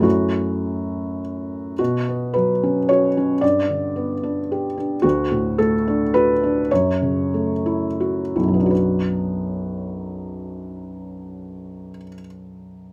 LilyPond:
\new Staff \with { instrumentName = "Felt piano" } { \time 3/4 \key b \minor \tempo 4 = 103 << { fis'2 r4 | fis'4 b'4 cis''4 | d''2~ d''8 r8 | fis'4 a'4 b'4 |
cis''2~ cis''8 r8 | <b,, fis, fis b d' fis' b'>2.~ | <b,, fis, fis b d' fis' b'>2. | } \\ { <fis, a cis' e'>2. | b,8 b8 fis8 cis'8 fis'8 cis'8 | g,8 d8 b8 d'8 g'8 d'8 | d,8 a,8 a8 d'8 fis'8 d'8 |
fis,8 cis8 a8 e'8 fis'8 e'8 | r2. | r2. | } >> }